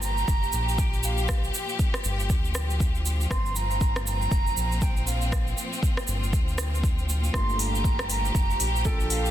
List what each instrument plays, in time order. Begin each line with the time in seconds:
Already playing: analog synth bass G1, string section A#2 F3 F4 G4
0.02 flute A#5, shaker
0.18 shaker
0.28 analog synth bass F1, kick, shaker
0.43 shaker
0.52 analog synth bass A#1, shaker
0.69 shaker
0.78 flute G5, kick, shaker
0.93 shaker
1.03 flute F5, shaker
1.18 shaker
1.28 kick, cross-stick, shaker
1.44 shaker
1.54 shaker
1.69 shaker
1.79 kick, shaker
1.94 cross-stick, shaker
2.04 analog synth bass G1, shaker
2.19 shaker
2.30 analog synth bass D2, kick, shaker
2.45 shaker
2.55 cross-stick, shaker
2.70 shaker
2.80 kick, shaker
2.95 shaker
3.06 shaker
3.21 shaker
3.31 analog synth bass G1, string section C4, flute C6, kick, cross-stick, shaker
3.46 shaker
3.56 flute A#5, shaker
3.71 shaker
3.81 kick, shaker
3.96 cross-stick, shaker
4.06 flute A#5, shaker
4.22 shaker
4.31 analog synth bass F1, kick, shaker
4.47 shaker
4.57 analog synth bass A#1, shaker
4.72 shaker
4.82 flute G5, kick, shaker
4.97 shaker
5.07 flute F5, shaker
5.21 shaker
5.32 kick, cross-stick, shaker
5.47 shaker
5.58 shaker
5.73 shaker
5.83 kick, shaker
5.97 cross-stick, shaker
6.07 analog synth bass G1, shaker
6.23 shaker
6.33 analog synth bass D2, kick, shaker
6.48 shaker
6.58 cross-stick, shaker
6.75 shaker
6.83 kick, shaker
6.99 shaker
7.09 shaker
7.24 shaker
7.34 analog synth bass G1, felt piano A3 A#3 D4 F4, string section G4, flute C6, kick, cross-stick, shaker
7.49 shaker
7.59 flute A#5, open hi-hat, shaker
7.75 shaker
7.84 kick, shaker
7.99 cross-stick, shaker
8.10 flute A#5, open hi-hat, shaker
8.25 shaker
8.35 analog synth bass F1, kick, shaker
8.50 shaker
8.60 analog synth bass A#1, open hi-hat, shaker
8.76 shaker
8.85 felt piano A#3 D4 F4 A4, flute G5, kick, shaker
9.00 shaker
9.10 flute F5, open hi-hat, shaker
9.26 shaker